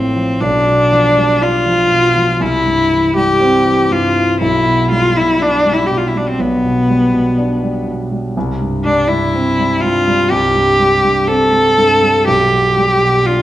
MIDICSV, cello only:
0, 0, Header, 1, 2, 480
1, 0, Start_track
1, 0, Key_signature, 0, "major"
1, 0, Tempo, 1001669
1, 192, Time_signature, 4, 2, 24, 8
1, 2589, Tempo, 981997
1, 6508, End_track
2, 0, Start_track
2, 0, Title_t, "Cello"
2, 0, Program_c, 0, 42
2, 0, Note_on_c, 0, 60, 72
2, 192, Note_on_c, 0, 62, 84
2, 199, Note_off_c, 0, 60, 0
2, 681, Note_on_c, 0, 65, 90
2, 688, Note_off_c, 0, 62, 0
2, 1157, Note_on_c, 0, 64, 81
2, 1164, Note_off_c, 0, 65, 0
2, 1512, Note_off_c, 0, 64, 0
2, 1514, Note_on_c, 0, 67, 80
2, 1877, Note_on_c, 0, 65, 80
2, 1884, Note_off_c, 0, 67, 0
2, 2107, Note_off_c, 0, 65, 0
2, 2109, Note_on_c, 0, 64, 78
2, 2346, Note_off_c, 0, 64, 0
2, 2351, Note_on_c, 0, 65, 84
2, 2474, Note_on_c, 0, 64, 83
2, 2482, Note_off_c, 0, 65, 0
2, 2596, Note_on_c, 0, 62, 85
2, 2604, Note_off_c, 0, 64, 0
2, 2748, Note_on_c, 0, 64, 75
2, 2755, Note_off_c, 0, 62, 0
2, 2814, Note_on_c, 0, 67, 64
2, 2821, Note_off_c, 0, 64, 0
2, 2869, Note_on_c, 0, 65, 57
2, 2876, Note_off_c, 0, 67, 0
2, 2920, Note_on_c, 0, 64, 61
2, 2927, Note_off_c, 0, 65, 0
2, 2966, Note_on_c, 0, 62, 62
2, 2973, Note_off_c, 0, 64, 0
2, 3020, Note_on_c, 0, 60, 73
2, 3028, Note_off_c, 0, 62, 0
2, 3078, Note_on_c, 0, 59, 80
2, 3085, Note_off_c, 0, 60, 0
2, 3795, Note_off_c, 0, 59, 0
2, 4269, Note_on_c, 0, 62, 77
2, 4384, Note_on_c, 0, 64, 76
2, 4391, Note_off_c, 0, 62, 0
2, 4741, Note_on_c, 0, 65, 89
2, 4748, Note_off_c, 0, 64, 0
2, 4985, Note_on_c, 0, 67, 88
2, 4992, Note_off_c, 0, 65, 0
2, 5459, Note_on_c, 0, 69, 92
2, 5466, Note_off_c, 0, 67, 0
2, 5944, Note_off_c, 0, 69, 0
2, 5947, Note_on_c, 0, 67, 85
2, 6427, Note_on_c, 0, 65, 88
2, 6435, Note_off_c, 0, 67, 0
2, 6508, Note_off_c, 0, 65, 0
2, 6508, End_track
0, 0, End_of_file